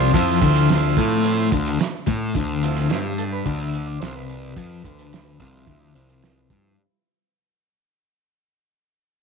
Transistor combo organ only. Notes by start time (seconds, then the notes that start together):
Already playing: F3 C4 F4
0.13 F3 C4 E4
1.25 F3 C4 E4
2.62 F3 C4 E4
3.18 A4
3.32 B4
3.45 D5
3.58 E5
3.87 D5
4.00 C5
4.16 B4
5.39 F3 C4 E4
5.66 E5
5.79 D5
5.94 C5
6.22 B4